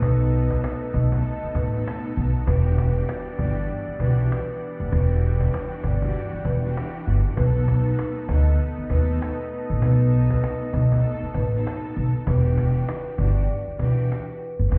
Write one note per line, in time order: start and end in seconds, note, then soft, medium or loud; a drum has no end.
0.00 0.56 B1 loud
0.00 1.01 B2 loud
0.00 2.43 A3 medium
0.00 2.12 B3 medium
0.00 2.43 B3 medium
0.00 1.01 B3 medium
0.00 2.43 D#4 medium
0.00 1.02 D#4 loud
0.00 2.12 A4 medium
0.00 1.02 A4 loud
0.00 0.90 B4 loud
0.00 2.12 D#5 loud
0.00 2.44 F#5 medium
0.00 cajon bass loud
0.21 cajon slap soft
0.50 cajon bass loud
0.64 cajon slap loud
0.93 1.21 B1 medium
0.93 1.21 D#5 medium
0.93 cajon bass loud
1.11 1.67 B2 loud
1.11 1.68 B3 medium
1.11 1.68 D#4 medium
1.11 1.68 A4 loud
1.11 cajon bass medium
1.25 1.53 D#5 medium
1.25 cajon slap medium
1.43 muted upright bass stroke medium
1.55 1.82 A1 medium
1.55 1.83 B4 medium
1.55 cajon bass loud
1.72 2.41 B2 loud
1.72 2.42 B3 medium
1.72 2.42 D#4 medium
1.72 2.43 A4 loud
1.87 cajon slap loud
2.17 2.32 B1 loud
2.45 3.01 E1 loud
2.45 3.32 E3 medium
2.45 7.34 E3 medium
2.45 7.34 G3 medium
2.45 7.02 B3 medium
2.45 3.32 D4 medium
2.45 3.33 F#4 medium
2.45 7.02 G4 medium
2.45 3.33 G4 loud
2.45 3.35 B4 loud
2.45 7.02 D5 medium
2.45 12.23 F#5 medium
2.45 cajon bass loud
2.49 7.34 D4 medium
2.78 cajon bass loud
3.09 cajon slap loud
3.38 3.66 G1 medium
3.38 3.83 E3 medium
3.38 3.83 D4 medium
3.38 3.83 F#4 medium
3.38 3.84 G4 loud
3.38 3.67 D5 medium
3.38 cajon bass loud
3.69 3.97 D5 medium
3.88 muted upright bass stroke soft
4.00 4.27 B1 loud
4.00 4.57 E3 loud
4.00 4.58 D4 medium
4.00 4.58 F#4 medium
4.00 4.58 G4 loud
4.00 4.88 B4 medium
4.00 cajon bass loud
4.32 cajon slap loud
4.61 cajon slap soft
4.80 4.91 F#1 medium
4.90 5.46 E1 loud
4.90 5.91 E3 loud
4.90 5.91 D4 medium
4.90 5.92 F#4 loud
4.90 5.92 G4 loud
4.90 5.79 B4 loud
4.90 cajon bass loud
5.40 cajon bass loud
5.54 cajon slap loud
5.84 6.11 G1 medium
5.84 6.11 D5 medium
5.84 cajon bass medium
6.00 6.56 E3 loud
6.00 6.57 D4 medium
6.00 6.57 F#4 medium
6.00 6.58 G4 loud
6.00 cajon bass medium
6.15 cajon slap medium
6.33 muted upright bass stroke medium
6.45 6.72 E1 medium
6.45 6.72 B4 medium
6.45 cajon bass loud
6.62 7.31 E3 loud
6.62 7.32 D4 medium
6.62 7.32 F#4 medium
6.62 7.33 G4 loud
6.77 cajon slap loud
7.06 7.22 G1 loud
7.06 cajon slap soft
7.36 7.91 B1 loud
7.36 8.22 B2 loud
7.36 12.23 A3 medium
7.36 8.22 B3 loud
7.36 12.23 B3 medium
7.36 8.23 D#4 medium
7.36 12.23 D#4 medium
7.36 8.23 A4 loud
7.36 8.24 B4 loud
7.36 cajon bass loud
7.68 cajon bass loud
7.99 cajon slap loud
8.27 8.56 D2 medium
8.27 8.72 B2 medium
8.27 8.73 B3 medium
8.27 8.73 D#4 medium
8.27 8.74 A4 loud
8.27 8.56 D#5 medium
8.27 cajon bass loud
8.59 11.92 B3 loud
8.59 11.92 A4 loud
8.59 8.87 D#5 medium
8.59 11.92 D#5 loud
8.59 cajon slap medium
8.78 muted upright bass stroke medium
8.89 9.17 D#2 medium
8.89 9.47 B2 loud
8.89 9.47 B3 medium
8.89 9.48 D#4 medium
8.89 9.48 A4 loud
8.89 9.78 B4 medium
8.89 cajon bass loud
9.22 cajon slap loud
9.51 cajon slap soft
9.70 9.82 A1 loud
9.80 10.36 B1 loud
9.80 10.81 B2 loud
9.80 10.81 B3 loud
9.80 10.81 D#4 loud
9.80 10.82 A4 loud
9.80 10.70 B4 loud
9.80 cajon bass loud
10.30 cajon bass loud
10.44 cajon slap loud
10.73 11.00 B1 medium
10.73 11.01 D#5 medium
10.73 cajon bass loud
10.91 11.47 B2 loud
10.91 11.47 B3 medium
10.91 11.48 D#4 medium
10.91 11.48 A4 loud
10.91 cajon bass loud
11.05 11.32 D#5 medium
11.23 muted upright bass stroke medium
11.34 11.62 A1 medium
11.34 11.62 B4 medium
11.34 cajon bass loud
11.51 12.21 B2 loud
11.51 12.21 B3 medium
11.51 12.22 D#4 medium
11.51 12.22 A4 loud
11.67 cajon slap loud
11.96 12.12 B1 medium
11.96 cajon slap soft
12.24 12.80 E1 loud
12.24 13.11 E3 medium
12.24 13.12 D4 medium
12.24 13.12 F#4 medium
12.24 13.12 G4 loud
12.24 13.14 B4 medium
12.24 cajon bass loud
12.58 cajon bass loud
12.89 cajon slap loud
13.17 13.45 G1 medium
13.17 13.62 E3 medium
13.17 13.62 D4 medium
13.17 13.63 F#4 medium
13.17 13.63 G4 loud
13.17 13.46 D5 medium
13.17 cajon bass loud
13.48 13.76 D5 medium
13.48 cajon slap medium
13.68 muted upright bass stroke soft
13.79 14.06 B1 medium
13.79 14.37 E3 loud
13.79 14.37 D4 medium
13.79 14.38 F#4 medium
13.79 14.38 G4 loud
13.79 14.67 B4 medium
13.79 cajon bass loud
13.98 cajon slap soft
14.12 cajon slap medium
14.41 cajon slap soft
14.59 14.70 F#1 medium
14.70 14.78 E1 loud
14.70 14.78 E3 loud
14.70 14.78 D4 medium
14.70 14.78 F#4 loud
14.70 14.78 G4 loud
14.70 14.78 B4 loud
14.70 cajon bass loud